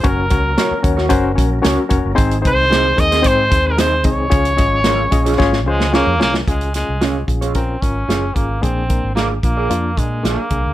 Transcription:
<<
  \new Staff \with { instrumentName = "Clean electric guitar" } { \time 4/4 \key des \major \tempo 4 = 112 r4 <des' ges' bes' des''>16 r8 <des' ges' bes' des''>16 r4 <des' ges' bes' des''>16 r8. | r4 <c' ees' aes' c''>16 r8 <c' ees' aes' c''>16 r4 <c' ees' aes' c''>16 r8. | r4 <des' f' aes' des''>16 r8 <des' f' aes' des''>16 r4 <des' f' aes' des''>16 r8. | r4 <des' f' aes' des''>16 r8 <des' f' aes' des''>16 r4 <des' f' aes' des''>16 r8. |
r4 <bes f' aes' d''>16 r8 <bes f' aes' d''>16 r4 <bes f' aes' d''>16 r8. | }
  \new Staff \with { instrumentName = "Reed electric piano" } { \time 4/4 \key des \major <des' ges' bes' des''>8 <des' ges' bes' des''>8 <des' ges' bes' des''>8 <des' ges' bes' des''>8 <des' ges' bes' c''>8 <des' ges' bes' des''>8 <des' ges' bes' des''>8 <des' ges' bes' des''>8 | <c' ees' aes' c''>8 <c' ees' aes' c''>8 <c' ees' aes' c''>8 <c' ees' aes' bes'>8 <c' ees' aes' c''>8 <c' ees' aes' c''>8 <c' ees' aes' ees''>8 <c' ees' aes' ees''>8 | <des' f' aes' des''>8 <des' f' aes' ees''>8 <des' f' aes' bes'>8 <des' f' aes' ees''>8 <des' f' aes' des''>8 <des' f' aes' c''>8 <des' f' aes' des''>8 <des' f' aes' des''>8 | <des' f' aes'>8 <des' f' aes'>8 <des' f' aes'>8 <des' f' aes'>8 <des' f' bes'>8 <des' f' bes'>8 <des' f' aes'>8 <des' f' aes'>8 |
<bes d' aes'>8 <bes d' bes'>8 <bes d' aes'>8 <bes d' f'>8 <bes d' f'>8 <bes d' bes'>8 <bes d' aes'>8 <bes d' aes'>8 | }
  \new Staff \with { instrumentName = "Tonewheel organ" } { \time 4/4 \key des \major <bes bes'>1 | <aes aes'>1~ | <aes aes'>1 | r1 |
r1 | }
  \new Staff \with { instrumentName = "Tonewheel organ" } { \time 4/4 \key des \major <ges des'>1 | <ees c'>1 | <f des'>1 | r1 |
r1 | }
  \new Staff \with { instrumentName = "Trumpet" } { \time 4/4 \key des \major bes'4. r2 r8 | r8 c''4 ees''8 c''8. bes'16 c''8 des''8~ | des''2~ des''8 aes8 bes8 bes8 | aes8 aes4 r8 c'8 des'4 bes8 |
c'4 bes8 bes4 aes8 bes4 | }
  \new Staff \with { instrumentName = "Fingered electric bass" } { \clef bass \time 4/4 \key des \major ges,,8 des,8 r8 ees,8 ges,,8 bes,,8 des,16 r16 f,,16 ges,,16 | aes,,8 c,4 ees,8 aes,8 ees,4 c,8 | des,8 aes,,4 bes,,8 aes,,8 des,8. f,16 c,8 | des,8. c,8. bes,,4 aes,,8 ges,,8 aes,,8 |
bes,,8. aes,,8. bes,,8 f,8 bes,8 bes,,16 r16 c,16 d,16 | }
  \new DrumStaff \with { instrumentName = "Drums" } \drummode { \time 4/4 <hh bd>8 <hh bd>8 <hh sn>8 <hh bd>16 sn16 <hh bd>8 <hh bd>8 <hh sn>8 <hh bd>8 | <hh bd>16 hh16 <hh bd>8 <hh sn>8 <hh bd>16 <hh sn>16 <hh bd>8 <hh bd>8 <hh sn>8 <hh bd>8 | <hh bd>16 hh16 <hh bd>8 <hh sn>8 <hh bd>16 hh16 <bd sn>16 sn8 sn16 sn8 sn16 sn16 | <hh bd>16 hh16 <hh sn>8 <hh sn>8 <hh bd>16 hh16 <hh bd>8 <hh bd>8 <hh sn>8 <hh bd>8 |
<hh bd>8 <hh bd>8 <hh sn>8 <hh bd>8 hh8 <hh bd>8 <hh sn>8 <hh bd>8 | }
>>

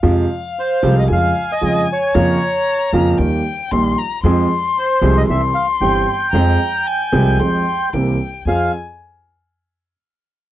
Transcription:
<<
  \new Staff \with { instrumentName = "Violin" } { \time 4/4 \key f \minor \tempo 4 = 114 f''2 aes''2 | bes''2 g''4 c'''8 bes''8 | c'''2 c'''2 | bes''4 aes''4 c'''4 g''4 |
aes''8 r2. r8 | }
  \new Staff \with { instrumentName = "Bandoneon" } { \time 4/4 \key f \minor r4 c''8. ees''16 f''8. ees''8. des''8~ | des''4. r2 r8 | r4 c''8. ees''16 e''8 f''8 g''4~ | g''2. r4 |
f''8 r2. r8 | }
  \new Staff \with { instrumentName = "Grand piano" } { \clef bass \time 4/4 \key f \minor <f, c f aes f'>8 r4 <c, c f aes f'>8 <f, des f aes f'>8 r8 <f, des f aes f'>8 r8 | <f, des f bes f'>8 r4 <f, des f bes f'>8 <ees, ees g bes g'>8 r8 <bes,, bes, ees g bes g'>8 r8 | <f, f aes c' aes'>8 r4 <c, c f aes c' aes'>8 <c, c e g c' g'>8 r8 <g,, g, e g c' g'>8 r8 | <f, f aes c' aes'>8 r4 <c, c f aes c' aes'>8 <f, f aes c' aes'>8 r8 <c, c e bes c' g'>8 r8 |
<f, c' f' aes'>8 r2. r8 | }
  \new Staff \with { instrumentName = "Upright bass" } { \clef bass \time 4/4 \key f \minor f,8 r4 c,8 f,8 r8 f,8 r8 | f,8 r4 f,8 ees,8 r8 bes,,8 r8 | f,8 r4 c,8 c,8 r8 g,,8 r8 | f,8 r4 c,8 f,8 r8 c,8 r8 |
f,8 r2. r8 | }
>>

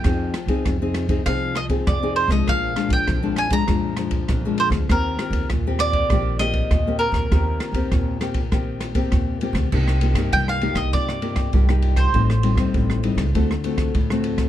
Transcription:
<<
  \new Staff \with { instrumentName = "Mandolin" } { \time 4/4 \key ees \major \tempo 4 = 99 g''2 f''8 ees''8 d''8 c''16 ees''16 | f''8. g''8. aes''16 bes''4.~ bes''16 c''8 | bes'4 r8 d''4 ees''4 bes'8~ | bes'2. r4 |
r4 g''16 f''8 ees''16 d''4.~ d''16 c''16~ | c''2.~ c''8 r8 | }
  \new Staff \with { instrumentName = "Nylon-string guitar" } { \time 4/4 \key ees \major << { <c' ees' aes'>8 r16 <c' ees' aes'>8 <c' ees' aes'>8 <c' ees' aes'>16 <c' ees' aes'>8 r16 <c' ees' aes'>8 <c' ees' aes'>8 <f aes d'>16~ | <f aes d'>8 <f aes d'>8. <f aes d'>8 <f aes d'>16 <f aes d'>8 <f aes d'>8. <f aes d'>8. | <bes c' g'>8 <bes c' g'>8 r16 <bes c' g'>8. <bes c' g'>8 <bes c' g'>8. <bes c' g'>8. | <bes c' g'>8. <bes c' g'>8. <bes c' g'>16 r16 <bes c' g'>8. <bes c' g'>8. <bes c' g'>8 |
<bes ees' g'>8 <bes ees' g'>16 <bes ees' g'>8. <bes ees' g'>4 <bes ees' g'>8 <bes ees' g'>16 <bes ees' g'>8. | <g c' ees'>16 r16 <g c' ees'>16 <g c' ees'>8. <g c' ees'>16 r16 <a c' fis'>16 r16 <a c' fis'>8 r16 <a c' fis'>8. | } \\ { f4 c4 f4 c4 | bes,4 f,4 bes,4 f,4 | ees4 bes,4 ees4 bes,4 | ees4 bes,4 ees4 bes,4 |
c4 g,4 c4 g,4 | a,4 a,4 d4 a,4 | } >> }
  \new Staff \with { instrumentName = "Upright bass" } { \clef bass \time 4/4 \key ees \major f,8 r16 f,16 f,4 c,4 f,8. c,16 | bes,,8 r16 bes,,16 bes,,4 f,4 bes,,8. d,16 | ees,8 r16 ees,16 ees,4 bes,,4 ees,8. ees,16 | ees,8 r16 ees,16 ees,4 bes,,4 ees,8. d,16 |
c,8. g,16 c,8. c,16 g,4 c,4 | a,,8. ees,16 a,,8. des,16 d,4 d,4 | }
  \new DrumStaff \with { instrumentName = "Drums" } \drummode { \time 4/4 <bd cymr ss>8 <cymr ss>16 <bd cymr>16 <bd cymr ss>8 <cymr ss>16 <bd cymr>16 <bd cymr ss>8 <cymr ss>16 <bd cymr>16 <bd cymr ss>8 cymr16 <bd cymr ss>16 | <bd cymr ss>8 <cymr ss>16 <bd cymr>16 <bd cymr ss>8 <cymr ss>16 <bd cymr>16 <bd cymr ss>8 <cymr ss>16 <bd cymr>16 <bd cymr ss>8 cymr16 <bd cymr ss>16 | <bd cymr ss>8 <cymr ss>16 <bd cymr>16 <bd cymr ss>8 <cymr ss>16 <bd cymr>16 <bd cymr ss>8 <cymr ss>16 <bd cymr>16 <bd cymr ss>8 cymr16 <bd cymr ss>16 | <bd cymr ss>8 <cymr ss>16 <bd cymr>16 <bd cymr ss>8 <cymr ss>16 <bd cymr>16 <bd cymr ss>8 <cymr ss>16 <bd cymr>16 <bd cymr ss>8 cymr16 <bd cymr ss>16 |
<cymc bd>16 ss16 cymr16 <bd cymr ss>16 <bd cymr>16 ss16 cymr16 <bd cymr ss>16 <bd cymr>16 ss16 cymr16 <bd cymr ss>16 <bd cymr>16 ss16 cymr16 <bd cymr ss>16 | <bd cymr>16 ss16 cymr16 <bd cymr ss>16 <bd cymr>16 ss16 cymr16 <bd cymr ss>16 <bd cymr>16 ss16 cymr16 <bd cymr ss>16 <bd cymr>16 ss16 cymr16 <bd cymr ss>16 | }
>>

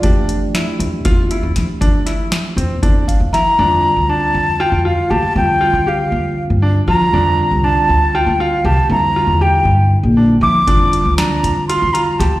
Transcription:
<<
  \new Staff \with { instrumentName = "Flute" } { \time 7/8 \key c \mixolydian \tempo 4 = 118 r2. r8 | r2. bes''8~ | bes''4 a''4 g''8 f''8 a''8 | g''4 f''4 r4 bes''8~ |
bes''4 a''4 g''8 f''8 a''8 | bes''4 g''4 r4 d'''8~ | d'''4 bes''4 c'''8 bes''8 a''8 | }
  \new Staff \with { instrumentName = "Grand piano" } { \time 7/8 \key c \mixolydian d'4 e'4 f'8 e'4 | d'8 e'4 c'8 d'4 e'8 | d'4 d'4 f'8 f'8 g'8~ | g'8 f'8 g'4 r8 d'8 f'8 |
d'4 d'4 f'8 f'8 g'8~ | g'8 f'8 g'4 r8 d'8 e'8 | d'4 d'4 f'8 f'8 g'8 | }
  \new Staff \with { instrumentName = "Tine electric piano" } { \time 7/8 \key c \mixolydian r2. r8 | r2 r8 f''8 e''8 | r2. r8 | r2. r8 |
r2. r8 | r2. r8 | r2. r8 | }
  \new Staff \with { instrumentName = "Tine electric piano" } { \time 7/8 \key c \mixolydian <e a d' g'>2.~ <e a d' g'>8~ | <e a d' g'>2.~ <e a d' g'>8 | <d g c' f'>2.~ <d g c' f'>8 | <d g c' f'>2.~ <d g c' f'>8 |
<d g c' f'>2.~ <d g c' f'>8 | <d g c' e'>2.~ <d g c' e'>8 | <d g c' f'>2.~ <d g c' f'>8 | }
  \new Staff \with { instrumentName = "Upright bass" } { \clef bass \time 7/8 \key c \mixolydian f,4. f,8 e,8 r16 f,16 f16 r16 | f,4. f,8 e,8 r16 f,16 f16 r16 | f,8 r16 d,8 r16 f,8 r16 f,8 r16 d,16 r16 | f,8 r16 d8. f,8. g,8. f8 |
f,8 r16 c,8 r16 d,8 r16 d,8 r16 c,16 r16 | f,8 r16 e,8. g,8. bes,,8. f8 | f,8 r16 d,8 r16 f,8 r16 f,8 r16 d,16 r16 | }
  \new DrumStaff \with { instrumentName = "Drums" } \drummode { \time 7/8 <hh bd>8 hh8 <hh sn>8 hh8 <hh bd>8 hh8 <hh sn>8 | <hh bd>8 <hh sn>8 <hh sn>8 hh8 <hh bd>8 <hh bd>8 <hh sn>8 | r4 r4 r4. | r4 r4 r4. |
r4 r4 r4. | r4 r4 r4. | <hh bd>8 hh8 <hh sn>8 hh8 hh8 hh8 <hh sn>8 | }
>>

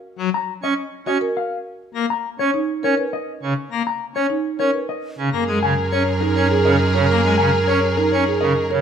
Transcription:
<<
  \new Staff \with { instrumentName = "Clean electric guitar" } { \time 3/4 \key ges \major \tempo 4 = 102 r8 bes''16 r16 ees''16 r8 ees''16 r16 f''16 r8 | r8 ais''16 r16 des''16 r8 des''16 r16 dis''16 r8 | r8 ais''16 r16 des''16 r8 des''16 r16 dis''16 r8 | r8 aes''16 r16 des''16 r16 bes'16 des''16 r16 ees''16 r16 bes'16 |
r8 aes''16 r16 des''16 r16 bes'16 des''16 r16 ees''16 r16 bes'16 | }
  \new Staff \with { instrumentName = "Alto flute" } { \time 3/4 \key ges \major r2. | r2. | r2. | bes'2.~ |
bes'2~ bes'8. r16 | }
  \new Staff \with { instrumentName = "Marimba" } { \time 3/4 \key ges \major r4. r16 ges'16 bes'16 r8. | r4 r16 dis'16 r16 ais'16 b'16 r8. | r4 r16 dis'16 r16 ais'16 b'16 r8. | r4. ees'16 r16 aes'16 bes'16 r16 des''16 |
r4. ees'16 r16 aes'16 bes'16 r16 des''16 | }
  \new Staff \with { instrumentName = "Violin section" } { \time 3/4 \key ges \major r2. | r2. | r2. | <aes' bes'>2.~ |
<aes' bes'>2~ <aes' bes'>8. r16 | }
  \new Staff \with { instrumentName = "Pipe organ" } { \time 3/4 \key ges \major r16 ges16 r8 des'16 r8 des'16 r4 | r16 ais16 r8 des'16 r8 des'16 r8. des16 | r16 ais16 r8 des'16 r8 des'16 r8. des16 | bes16 aes16 des16 r16 des'16 r8 des'16 r16 des16 r16 des16 |
bes16 aes16 des16 r16 des'16 r8 des'16 r16 des16 r16 des16 | }
  \new Staff \with { instrumentName = "Double bass" } { \clef bass \time 3/4 \key ges \major r2. | r2. | r2. | ges,2.~ |
ges,2. | }
>>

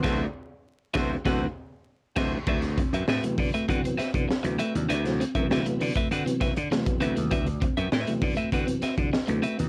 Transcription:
<<
  \new Staff \with { instrumentName = "Clean electric guitar" } { \time 4/4 \key d \mixolydian \tempo 4 = 99 <c' fis' b' e''>8 r4 <c' fis' b' e''>8 <c' fis' b' fis''>8 r4 <c' fis' b' e''>8 | <c' fis' b' e''>16 r8 <c' fis' b' e''>16 <c' fis' b' e''>16 r8 <c' fis' b' e''>16 <c' fis' b' fis''>16 r16 <c' fis' b' e''>16 r8. <c' fis' b' e''>16 r16 | <c' fis' b' e''>16 r8 <c' fis' b' e''>16 <c' fis' b' e''>16 r8 <c' fis' b' e''>16 <c' fis' b' fis''>16 r16 <c' fis' b' e''>16 r8. <c' fis' b' e''>16 r16 | <c' fis' b' e''>16 r8 <c' fis' b' e''>16 <c' fis' b' e''>16 r8 <c' fis' b' e''>16 <c' fis' b' fis''>16 r16 <c' fis' b' e''>16 r8. <c' fis' b' e''>16 r16 | }
  \new Staff \with { instrumentName = "Horn section" } { \time 4/4 \key d \mixolydian <a fis' c''>8 r4 <a fis' c''>8 <a fis' c''>8 r4 <a fis' c''>8 | r1 | r1 | r1 | }
  \new Staff \with { instrumentName = "Clean electric guitar" } { \time 4/4 \key d \mixolydian r1 | d'16 r16 c'16 r8 a16 r16 a16 r16 c'16 c'16 r8 a16 a16 r16 | d'16 r16 c'16 r8 a16 r16 a16 r16 c'16 c'16 r16 a16 r8 a16 | d'16 r16 c'16 r8 a16 r16 a16 r16 c'16 c'16 r8 a16 a16 r16 | }
  \new Staff \with { instrumentName = "Tonewheel organ" } { \clef bass \time 4/4 \key d \mixolydian <c e fis b>8 r4 <c e fis b>8 <c e fis b>8 r4 <c e fis c'>8 | r4 r16 <c e fis b>8 r16 <c e fis b>8 r16 <c e fis b>16 r16 <c e fis b>16 r16 <c e fis d'>16 | r16 <c e fis c'>16 r16 <c e fis a b>4 r8 <c e fis b>8 r16 <c e fis b>4~ | <c e fis b>16 r4 <c e fis b>8 r16 <c e fis b>8 r16 <c e fis d'>16 r16 <c e fis b>16 r16 <c e fis b>16 | }
  \new Staff \with { instrumentName = "Slap bass" } { \clef bass \time 4/4 \key d \mixolydian d,8 r4 d,8 d,8 r4 d,8 | d,8. fis,16 a,16 r16 d16 r16 d16 r8 d16 r16 d,16 r16 ees,16 | d,8. fis,16 d,16 r16 d16 r16 d16 r8 d16 r8 d,16 ees,16 | d,8. fis,16 a,16 r16 d16 r16 d16 r8 d16 r16 d,16 r16 ees,16 | }
  \new DrumStaff \with { instrumentName = "Drums" } \drummode { \time 4/4 <cymc bd sn>4 r8 <bd sn>8 <bd sn>4 r8 <cymc bd sn>8 | <cymc bd>16 <hh sn>16 <hh bd>16 hh16 sn16 hh16 <hho bd>16 hh16 <hh bd>16 hh16 <hh sn>16 <hh bd>16 sn16 hh16 hh16 hh16 | hh16 <hh sn>16 hh16 <hh bd>16 sn16 hh16 hho16 <hh bd>16 hh16 hh16 <hh bd sn>16 hh16 sn16 <hh bd>16 hh16 hh16 | <hh bd>16 hh16 <hh bd>16 hh16 sn16 hh16 <hho bd>16 hh16 <hh bd>16 hh16 <hh sn>16 <hh bd>16 sn16 hh16 hh16 hh16 | }
>>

